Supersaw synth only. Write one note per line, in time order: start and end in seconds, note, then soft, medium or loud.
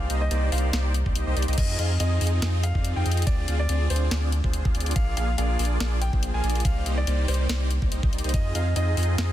0.10 0.22 A#3 medium
0.10 0.22 D#4 medium
0.10 0.22 G4 medium
0.10 0.22 C5 medium
0.10 0.22 D#5 medium
0.31 0.50 A#3 medium
0.31 0.50 D#4 medium
0.31 0.50 G4 medium
0.31 0.50 C5 medium
0.31 0.50 D5 medium
0.52 0.71 A#3 medium
0.52 0.71 D#4 medium
0.52 0.71 G4 medium
0.52 0.71 C5 medium
0.52 0.71 D5 medium
0.73 0.92 A#3 medium
0.73 0.92 D#4 medium
0.73 0.92 G4 medium
0.73 0.92 C5 medium
0.73 0.92 D5 loud
1.06 1.13 A#3 medium
1.06 1.13 D#4 medium
1.06 1.13 G4 medium
1.06 1.13 C5 medium
1.06 1.13 D5 medium
1.16 1.24 A#3 medium
1.16 1.24 D#4 medium
1.16 1.24 G4 medium
1.16 1.24 C5 medium
1.16 1.24 D#5 loud
1.27 1.35 A#3 loud
1.27 1.35 D#4 medium
1.27 1.35 G4 medium
1.27 1.35 C5 medium
1.27 1.35 D#5 loud
1.37 1.46 A#3 medium
1.37 1.46 D#4 medium
1.37 1.46 G4 medium
1.37 1.46 C5 medium
1.37 1.46 D5 medium
1.48 1.56 A#3 medium
1.48 1.56 D#4 medium
1.48 1.56 G4 medium
1.48 1.55 C5 medium
1.48 1.56 D#5 loud
1.58 1.77 C4 medium
1.58 1.77 D#4 medium
1.58 1.77 F4 medium
1.58 1.77 G#4 medium
1.58 1.77 D#5 medium
1.79 1.91 C4 medium
1.79 1.91 D#4 medium
1.79 1.91 F4 medium
1.79 1.91 G#4 medium
1.79 1.91 F5 medium
2.00 2.19 C4 medium
2.00 2.19 D#4 medium
2.00 2.19 F4 medium
2.00 2.19 G#4 medium
2.00 2.19 D#5 medium
2.21 2.40 C4 medium
2.21 2.40 D#4 medium
2.21 2.40 F4 medium
2.21 2.40 G#4 medium
2.21 2.40 D#5 medium
2.42 2.61 C4 medium
2.42 2.61 D#4 medium
2.42 2.61 F4 medium
2.42 2.61 G#4 medium
2.42 2.61 D#5 loud
2.75 2.93 C4 medium
2.75 2.93 D#4 medium
2.75 2.93 F4 medium
2.75 2.93 G#4 medium
2.75 2.93 D5 loud
2.96 3.04 C4 medium
2.96 3.04 D#4 medium
2.96 3.04 F4 medium
2.96 3.04 G#4 medium
2.96 3.04 F5 loud
3.06 3.25 C4 medium
3.06 3.25 D#4 medium
3.06 3.25 F4 medium
3.06 3.25 G#4 medium
3.06 3.25 D#5 loud
3.27 3.46 C4 medium
3.27 3.46 D4 medium
3.27 3.46 F4 medium
3.27 3.46 G#4 medium
3.48 3.60 C4 medium
3.48 3.60 D4 medium
3.48 3.60 F4 medium
3.48 3.60 G#4 medium
3.48 3.60 F5 medium
3.69 3.88 C4 medium
3.69 3.88 D4 medium
3.69 3.88 F4 medium
3.69 3.88 G#4 medium
3.69 3.88 D5 medium
3.90 4.09 C4 medium
3.90 4.09 D4 medium
3.90 4.09 F4 medium
3.90 4.09 G#4 medium
3.90 4.09 D5 medium
4.11 4.30 C4 medium
4.11 4.30 D4 medium
4.11 4.30 F4 medium
4.11 4.30 G#4 medium
4.11 4.30 D5 medium
4.44 4.62 C4 medium
4.44 4.62 D4 medium
4.44 4.62 F4 medium
4.44 4.62 G#4 medium
4.44 4.62 C5 loud
4.65 4.73 C4 medium
4.65 4.73 D4 medium
4.65 4.73 F4 medium
4.65 4.73 G#4 medium
4.65 4.73 F5 loud
4.75 4.94 C4 medium
4.75 4.94 D4 medium
4.75 4.94 F4 medium
4.75 4.94 G#4 medium
4.75 4.94 D5 loud
4.96 5.15 A#3 medium
4.96 5.15 D4 medium
4.96 5.15 G#4 medium
5.17 5.29 A#3 medium
5.17 5.29 D4 medium
5.17 5.29 F4 medium
5.17 5.29 G#4 medium
5.17 5.29 F5 medium
5.38 5.57 A#3 medium
5.38 5.57 D4 medium
5.38 5.57 F4 medium
5.38 5.57 G#4 medium
5.38 5.57 D5 medium
5.59 5.78 A#3 medium
5.59 5.78 D4 medium
5.59 5.78 F4 medium
5.59 5.78 G#4 medium
5.59 5.78 D5 medium
5.80 5.99 A#3 medium
5.80 5.99 D4 medium
5.80 5.99 F4 medium
5.80 5.99 G#4 medium
5.80 5.99 D5 loud
6.13 6.31 A#3 medium
6.13 6.31 D4 medium
6.13 6.31 F4 medium
6.13 6.31 G#4 medium
6.13 6.31 C5 loud
6.34 6.42 A#3 medium
6.34 6.42 D4 medium
6.34 6.42 F4 medium
6.34 6.42 G#4 medium
6.34 6.42 F5 loud
6.44 6.63 A#3 medium
6.44 6.63 D4 medium
6.44 6.63 F4 medium
6.44 6.63 G#4 medium
6.44 6.63 D5 loud
6.86 6.98 A#3 medium
6.86 6.98 D#4 medium
6.86 6.98 G4 medium
6.86 6.98 C5 medium
6.86 6.98 D#5 medium
7.07 7.26 A#3 medium
7.07 7.26 D#4 medium
7.07 7.26 G4 medium
7.07 7.26 C5 medium
7.07 7.26 D5 medium
7.28 7.47 A#3 medium
7.28 7.47 D#4 medium
7.28 7.47 G4 medium
7.28 7.47 C5 medium
7.28 7.47 D5 medium
7.49 7.68 A#3 medium
7.49 7.68 D#4 medium
7.49 7.68 G4 medium
7.49 7.68 C5 medium
7.49 7.68 D5 medium
7.82 7.89 A#3 medium
7.82 7.89 D#4 medium
7.82 7.89 G4 medium
7.82 7.89 C5 medium
7.82 7.89 D5 medium
7.92 8.00 A#3 medium
7.92 8.00 D#4 medium
7.92 8.00 G4 medium
7.92 8.00 C5 medium
7.92 8.00 D#5 loud
8.03 8.11 A#3 loud
8.03 8.11 D#4 medium
8.03 8.11 G4 medium
8.03 8.11 C5 medium
8.03 8.11 D#5 loud
8.13 8.22 A#3 medium
8.13 8.22 D#4 medium
8.13 8.22 G4 medium
8.13 8.21 C5 medium
8.13 8.22 D5 medium
8.24 8.32 A#3 medium
8.24 8.32 D#4 medium
8.24 8.32 G4 medium
8.24 8.31 C5 medium
8.24 8.32 D#5 loud
8.34 8.53 C4 medium
8.34 8.53 D#4 medium
8.34 8.53 F4 medium
8.34 8.53 G#4 medium
8.34 8.53 D#5 medium
8.55 8.67 C4 medium
8.55 8.67 D#4 medium
8.55 8.67 F4 medium
8.55 8.67 G#4 medium
8.55 8.67 F5 medium
8.76 8.95 C4 medium
8.76 8.95 D#4 medium
8.76 8.95 F4 medium
8.76 8.95 G#4 medium
8.76 8.95 D#5 medium
8.97 9.16 C4 medium
8.97 9.16 D#4 medium
8.97 9.16 F4 medium
8.97 9.16 G#4 medium
8.97 9.16 D#5 medium
9.18 9.32 C4 medium
9.18 9.32 D#4 medium
9.18 9.32 F4 medium
9.18 9.32 D#5 loud